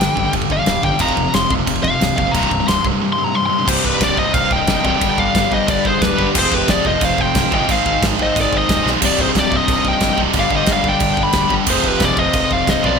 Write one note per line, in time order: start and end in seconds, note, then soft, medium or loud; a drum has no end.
0.00 0.14 G2 medium
0.00 0.16 G2 loud
0.00 0.13 D3 medium
0.00 0.16 D3 medium
0.00 0.16 G3 loud
0.00 0.31 G5 loud
0.00 snare loud
0.00 crash medium
0.15 0.27 G1 medium
0.15 0.23 G2 medium
0.15 0.31 G2 medium
0.15 0.22 D3 medium
0.15 0.33 D3 medium
0.15 0.33 G3 loud
0.15 kick medium
0.24 0.31 G2 medium
0.24 0.31 D3 medium
0.32 0.43 G1 loud
0.32 0.47 G2 medium
0.32 0.65 G2 medium
0.32 0.47 D3 medium
0.32 0.66 D3 loud
0.32 0.67 G3 loud
0.32 kick loud
0.32 crash medium
0.42 kick medium
0.50 0.60 G1 loud
0.50 0.59 G2 medium
0.50 0.58 D3 medium
0.50 0.83 F5 loud
0.50 kick medium
0.60 0.66 G2 medium
0.60 0.66 D3 medium
0.66 0.77 D1 loud
0.66 0.83 G2 loud
0.66 0.81 G2 medium
0.66 0.82 D3 medium
0.66 0.82 G3 loud
0.66 snare loud
0.66 crash medium
0.83 0.93 G1 loud
0.83 0.91 G2 medium
0.83 0.99 G2 medium
0.83 0.91 D3 medium
0.83 0.99 D3 medium
0.83 0.98 G3 medium
0.83 1.00 G5 loud
0.83 kick medium
0.92 0.98 G2 medium
0.92 0.99 D3 medium
0.98 1.10 F1 medium
0.98 1.15 F2 loud
0.98 1.31 F2 loud
0.98 1.15 C3 loud
0.98 1.32 C3 loud
0.98 1.15 F3 loud
0.98 1.33 F3 loud
0.98 1.33 A#5 loud
0.98 kick loud
0.98 crash medium
1.09 kick medium
1.17 1.27 F1 loud
1.17 1.24 F2 medium
1.17 1.23 C3 loud
1.17 kick medium
1.24 1.32 F2 medium
1.24 1.33 C3 medium
1.33 1.44 F1 medium
1.33 1.50 F2 medium
1.33 1.48 F2 medium
1.33 1.50 C3 loud
1.33 1.49 C3 loud
1.33 1.48 F3 loud
1.33 1.50 C6 loud
1.33 snare loud
1.33 crash medium
1.50 1.61 F1 medium
1.50 1.64 F2 medium
1.50 1.58 F2 medium
1.50 1.58 C3 medium
1.50 1.64 C3 loud
1.50 1.65 F3 loud
1.50 kick loud
1.59 1.66 F2 medium
1.59 1.67 C3 medium
1.65 1.77 F1 loud
1.65 1.99 F2 medium
1.65 1.82 F2 medium
1.65 1.99 C3 medium
1.65 1.82 C3 medium
1.65 2.00 F3 loud
1.65 kick loud
1.65 crash medium
1.76 kick medium
1.83 1.94 F1 loud
1.83 1.90 F2 medium
1.83 1.90 C3 medium
1.83 2.15 F5 loud
1.83 kick medium
1.92 1.99 F2 medium
1.92 2.00 C3 medium
2.00 2.11 C1 loud
2.00 2.17 F2 medium
2.00 2.15 F2 medium
2.00 2.17 C3 loud
2.00 2.15 C3 medium
2.00 2.16 F3 loud
2.00 snare loud
2.00 crash medium
2.16 2.28 F1 loud
2.16 2.32 F2 medium
2.16 2.26 F2 medium
2.16 2.33 C3 medium
2.16 2.26 C3 medium
2.16 2.33 F3 loud
2.16 2.33 F5 loud
2.16 kick loud
2.28 2.35 F2 medium
2.28 2.35 C3 medium
2.28 2.65 A#5 loud
2.32 2.45 C1 medium
2.32 2.64 C2 medium
2.32 2.49 C2 loud
2.32 2.65 G2 loud
2.32 2.49 G2 loud
2.32 2.65 C3 loud
2.32 kick loud
2.32 crash medium
2.37 2.51 C3 loud
2.43 kick medium
2.51 2.62 C1 loud
2.51 2.59 C2 medium
2.51 2.59 G2 medium
2.51 kick medium
2.60 2.68 C2 medium
2.60 2.68 G2 medium
2.65 2.78 C1 medium
2.65 2.83 C2 medium
2.65 2.83 G2 medium
2.65 2.83 C3 medium
2.65 2.84 C6 loud
2.65 crash medium
2.69 2.83 C2 loud
2.69 2.83 G2 medium
2.69 snare loud
2.84 2.94 C1 medium
2.84 3.00 C2 medium
2.84 2.93 C2 medium
2.84 3.01 G2 medium
2.84 2.93 G2 medium
2.84 3.02 C3 medium
2.84 kick medium
2.94 3.00 C2 medium
2.94 3.01 G2 medium
3.01 3.33 C2 medium
3.01 3.16 C2 medium
3.01 3.16 G2 loud
3.01 3.35 G2 loud
3.01 3.35 C3 loud
3.13 3.24 C6 loud
3.17 3.24 C2 medium
3.17 3.23 G2 loud
3.24 3.32 C2 medium
3.24 3.33 G2 medium
3.24 3.35 A#5 loud
3.34 3.49 C2 medium
3.34 3.51 C2 loud
3.34 3.49 G2 medium
3.34 3.51 G2 loud
3.34 3.49 C3 loud
3.34 3.45 C6 loud
3.46 3.67 C6 loud
3.50 3.65 C2 medium
3.50 3.58 C2 medium
3.50 3.58 G2 medium
3.50 3.66 G2 medium
3.50 3.66 C3 medium
3.59 3.64 C2 medium
3.59 3.66 G2 medium
3.65 3.78 C1 medium
3.65 4.82 C2 loud
3.65 4.16 C2 medium
3.65 4.16 G2 loud
3.65 4.83 G2 medium
3.65 4.16 C3 loud
3.65 4.82 C3 loud
3.65 4.16 G3 medium
3.65 3.84 C5 medium
3.65 kick loud
3.65 crash loud
3.65 china medium
3.69 4.14 D#4 loud
3.69 3.84 G4 medium
3.84 3.94 C1 medium
3.84 4.00 G4 medium
3.84 4.03 B4 medium
3.84 kick medium
4.01 4.11 C1 loud
4.01 4.19 G4 medium
4.01 4.18 D5 medium
4.01 kick loud
4.01 snare loud
4.01 china medium
4.15 4.27 C1 medium
4.15 4.64 C2 medium
4.15 4.65 G2 medium
4.15 4.66 C3 medium
4.15 4.66 G3 medium
4.15 4.65 D#4 medium
4.15 4.33 C5 medium
4.15 4.34 D#5 medium
4.15 kick medium
4.34 4.44 C1 loud
4.34 4.51 C5 medium
4.34 4.50 F5 loud
4.34 kick loud
4.34 china medium
4.51 4.61 C1 medium
4.51 4.84 D#5 medium
4.51 4.84 G5 loud
4.51 kick medium
4.65 4.78 G1 loud
4.65 4.97 C2 medium
4.65 4.96 G2 medium
4.65 4.99 C3 medium
4.65 4.98 G3 medium
4.65 5.00 D#4 loud
4.65 kick loud
4.65 snare loud
4.65 china medium
4.83 4.95 C1 loud
4.83 4.98 G2 loud
4.83 4.99 C3 medium
4.83 5.19 G5 loud
4.83 kick loud
4.87 4.99 C2 medium
4.87 5.18 D5 medium
4.97 5.48 G2 loud
4.97 6.16 G2 loud
4.97 5.49 D3 medium
4.97 5.49 G3 loud
4.97 5.49 B3 loud
4.97 5.49 D4 loud
4.97 5.48 G4 loud
5.01 5.11 G1 loud
5.01 6.17 D3 loud
5.01 6.17 G3 loud
5.01 kick loud
5.01 china medium
5.18 5.28 G1 loud
5.18 5.50 D5 medium
5.18 5.53 F5 loud
5.18 kick medium
5.35 5.45 G1 medium
5.35 kick loud
5.35 snare loud
5.35 china medium
5.49 5.62 G1 medium
5.49 5.98 G2 medium
5.49 5.98 D3 medium
5.49 5.99 G3 medium
5.49 6.00 B3 medium
5.49 5.99 D4 medium
5.49 5.99 G4 medium
5.49 kick medium
5.53 5.68 C5 medium
5.53 5.69 D#5 medium
5.68 5.78 G1 loud
5.68 5.85 B4 medium
5.68 5.86 D5 loud
5.68 kick loud
5.68 china medium
5.85 5.95 G1 medium
5.85 6.02 G#4 medium
5.85 6.02 C5 medium
5.85 kick medium
5.99 6.12 D1 loud
5.99 6.32 G2 medium
5.99 6.33 D3 loud
5.99 6.33 G3 medium
5.99 6.33 B3 medium
5.99 6.34 D4 loud
5.99 6.34 G4 medium
5.99 6.26 B4 loud
5.99 kick loud
5.99 snare loud
5.99 china medium
6.07 6.29 G4 medium
6.18 6.28 G1 loud
6.18 6.33 G2 medium
6.18 6.34 D3 medium
6.18 6.34 G3 loud
6.18 kick loud
6.33 6.45 F1 loud
6.33 6.82 F2 loud
6.33 7.50 F2 loud
6.33 6.83 C3 loud
6.33 7.51 C3 loud
6.33 6.83 F3 loud
6.33 6.84 G#3 loud
6.33 6.82 C4 loud
6.33 6.81 F4 loud
6.33 kick loud
6.33 crash loud
6.33 china medium
6.37 7.50 F3 loud
6.37 6.55 G#4 medium
6.37 6.54 C5 medium
6.52 6.62 F1 loud
6.52 6.70 G4 medium
6.52 6.70 B4 loud
6.52 kick loud
6.68 6.78 F1 medium
6.68 6.86 D5 medium
6.68 kick loud
6.68 snare loud
6.68 china medium
6.72 6.86 G#4 medium
6.82 6.95 F1 medium
6.82 7.33 C3 medium
6.82 7.33 F3 loud
6.82 7.33 G#3 medium
6.82 7.36 C4 medium
6.82 7.32 F4 loud
6.82 kick medium
6.86 7.32 F2 medium
6.86 7.01 C5 medium
6.86 7.03 D#5 loud
7.01 7.12 F1 loud
7.01 7.18 C5 medium
7.01 7.21 F5 loud
7.01 kick loud
7.01 china medium
7.18 7.28 F1 loud
7.18 7.52 C5 medium
7.18 7.53 G5 loud
7.18 kick medium
7.33 7.45 C1 loud
7.33 7.66 F2 medium
7.33 7.67 C3 medium
7.33 7.67 F3 medium
7.33 7.67 G#3 medium
7.33 7.68 C4 loud
7.33 7.68 F4 medium
7.33 kick loud
7.33 snare loud
7.33 china medium
7.51 7.62 G1 medium
7.51 7.67 F2 medium
7.51 7.68 C3 medium
7.51 7.67 F3 loud
7.51 7.71 G5 loud
7.51 kick loud
7.56 7.72 D#5 medium
7.67 7.79 G#1 medium
7.67 8.16 G#2 loud
7.67 8.83 G#2 loud
7.67 8.16 D#3 loud
7.67 8.84 D#3 loud
7.67 8.17 G#3 loud
7.67 8.18 C4 loud
7.67 8.17 D#4 loud
7.67 8.15 G#4 loud
7.67 kick loud
7.67 china medium
7.71 8.82 G#3 loud
7.71 8.03 C5 medium
7.71 8.03 F5 loud
7.86 7.95 G#1 loud
7.86 kick medium
8.02 8.12 G#1 medium
8.02 kick loud
8.02 snare loud
8.02 china medium
8.16 8.29 G#1 medium
8.16 8.66 G#2 medium
8.16 8.68 D#3 medium
8.16 8.67 G#3 medium
8.16 8.67 C4 medium
8.16 8.67 D#4 medium
8.16 8.66 G#4 medium
8.16 kick medium
8.23 8.36 C5 medium
8.23 8.37 D#5 medium
8.36 8.46 G#1 loud
8.36 kick loud
8.36 china medium
8.41 8.55 G#4 medium
8.41 8.57 D5 loud
8.53 8.63 G#1 medium
8.53 8.87 C5 medium
8.53 kick medium
8.57 8.87 D#5 loud
8.67 8.79 D#1 loud
8.67 8.99 G#2 medium
8.67 9.01 D#3 medium
8.67 9.01 G#3 medium
8.67 9.01 C4 medium
8.67 9.02 D#4 medium
8.67 kick loud
8.67 snare loud
8.67 china medium
8.71 9.02 G#4 medium
8.83 8.95 B1 medium
8.83 9.01 D#3 medium
8.83 8.99 G#3 medium
8.83 snare medium
8.88 9.00 G#2 medium
9.00 9.12 C1 loud
9.00 9.49 C2 medium
9.00 10.17 C2 medium
9.00 9.50 G2 medium
9.00 10.17 G2 loud
9.00 9.50 C3 medium
9.00 10.16 C3 loud
9.00 9.50 G3 loud
9.00 9.48 D#4 loud
9.00 kick loud
9.00 china medium
9.00 crash loud
9.05 9.18 G4 loud
9.05 9.20 D5 medium
9.19 9.29 C1 medium
9.19 9.27 G#4 medium
9.19 9.27 C5 loud
9.19 kick loud
9.35 9.45 C1 loud
9.35 9.53 G4 medium
9.35 9.56 D5 loud
9.35 kick loud
9.35 snare loud
9.35 china medium
9.49 9.62 C1 medium
9.49 9.97 C2 medium
9.49 9.98 G2 medium
9.49 9.99 C3 medium
9.49 10.00 G3 medium
9.49 9.99 D#4 loud
9.49 kick medium
9.53 9.86 C5 medium
9.53 9.88 D#5 loud
9.68 9.78 C1 loud
9.68 kick loud
9.68 china medium
9.85 9.95 C1 loud
9.85 10.17 G5 loud
9.85 kick medium
9.90 10.19 D#5 medium
9.98 10.11 G1 loud
9.98 10.31 C2 medium
9.98 10.31 G2 medium
9.98 10.33 C3 medium
9.98 10.32 G3 loud
9.98 10.34 D#4 medium
9.98 kick loud
9.98 snare loud
9.98 china medium
10.17 10.28 C1 loud
10.17 10.31 G2 medium
10.17 10.33 C3 medium
10.17 kick medium
10.21 10.32 C2 medium
10.32 10.44 G1 medium
10.32 10.82 G2 loud
10.32 11.49 G2 medium
10.32 10.83 D3 loud
10.32 11.50 D3 loud
10.32 10.83 G3 medium
10.32 10.83 B3 loud
10.32 10.83 D4 loud
10.32 10.81 G4 loud
10.32 kick loud
10.32 china medium
10.36 11.49 G3 loud
10.36 10.52 D5 loud
10.36 10.53 F5 medium
10.51 10.61 G1 loud
10.51 kick medium
10.56 10.70 C5 medium
10.56 10.71 D#5 medium
10.66 10.78 G1 medium
10.66 kick loud
10.66 snare loud
10.66 china medium
10.72 10.86 D5 medium
10.72 10.87 F5 loud
10.82 10.94 G1 medium
10.82 11.32 D3 medium
10.82 11.33 G3 medium
10.82 11.33 B3 medium
10.82 11.33 D4 medium
10.82 11.32 G4 loud
10.82 kick loud
10.86 11.30 G2 medium
10.86 11.18 D5 loud
10.86 11.21 G5 medium
11.00 11.11 G1 loud
11.00 kick loud
11.00 china medium
11.17 11.28 G1 medium
11.17 kick medium
11.22 11.51 G5 medium
11.22 11.52 B5 loud
11.31 11.44 D1 loud
11.31 11.65 G2 medium
11.31 11.66 D3 medium
11.31 11.67 G3 medium
11.31 11.67 B3 loud
11.31 11.67 D4 loud
11.31 kick loud
11.31 snare loud
11.31 china medium
11.36 11.68 G4 loud
11.50 11.61 G1 loud
11.50 11.67 D3 medium
11.50 11.66 G3 loud
11.50 kick loud
11.54 11.65 G2 medium
11.65 11.77 F1 medium
11.65 12.82 F2 loud
11.65 12.16 F2 loud
11.65 12.16 C3 medium
11.65 12.84 C3 loud
11.65 12.16 F3 loud
11.65 12.82 F3 loud
11.65 12.16 G#3 loud
11.65 12.16 C4 loud
11.65 kick loud
11.65 china medium
11.65 crash loud
11.69 12.14 F4 loud
11.69 11.88 G#4 medium
11.69 11.88 C5 medium
11.84 11.94 F1 medium
11.84 12.04 B4 loud
11.84 kick medium
11.88 12.03 G4 medium
12.00 12.11 F1 loud
12.00 12.21 G#4 medium
12.00 kick loud
12.00 snare loud
12.00 china medium
12.04 12.19 D5 medium
12.15 12.27 F1 medium
12.15 12.66 C3 medium
12.15 12.66 F3 medium
12.15 12.66 G#3 medium
12.15 12.68 C4 medium
12.15 12.65 F4 medium
12.15 12.52 D#5 loud
12.15 kick loud
12.20 12.64 F2 medium
12.20 12.53 C5 medium
12.33 12.44 F1 loud
12.33 kick loud
12.33 china medium
12.51 12.61 F1 medium
12.51 12.68 D5 medium
12.51 12.69 F5 loud
12.51 kick medium
12.65 12.78 C1 loud
12.65 12.98 F2 medium
12.65 12.99 C3 medium
12.65 12.99 F3 loud
12.65 12.99 G#3 medium
12.65 12.99 C4 medium
12.65 kick loud
12.65 snare loud
12.65 china medium
12.69 12.99 F4 loud
12.69 12.84 C5 medium
12.69 12.84 D#5 loud
12.83 12.99 B1 medium
12.83 12.99 F2 medium
12.83 12.99 C3 medium
12.83 12.99 F3 loud
12.83 12.99 B4 medium
12.83 12.99 D5 loud
12.83 kick medium